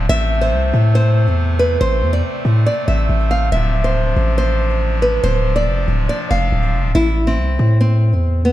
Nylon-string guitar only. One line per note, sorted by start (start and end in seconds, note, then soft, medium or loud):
0.09 0.40 E5 loud
0.41 0.92 C5 medium
0.95 1.55 C5 medium
1.59 1.80 B4 medium
1.81 2.11 C5 loud
2.13 2.63 D5 medium
2.66 2.87 D5 medium
2.88 3.28 E5 medium
3.31 3.51 F5 medium
3.52 3.82 E5 medium
3.84 4.35 C5 medium
4.38 4.98 C5 medium
5.02 5.22 B4 medium
5.24 5.54 C5 loud
5.56 6.06 D5 medium
6.09 6.29 D5 medium
6.31 6.91 F5 medium
6.95 7.25 E4 loud
7.27 7.77 C4 medium
7.81 8.41 C4 medium
8.45 8.52 B3 medium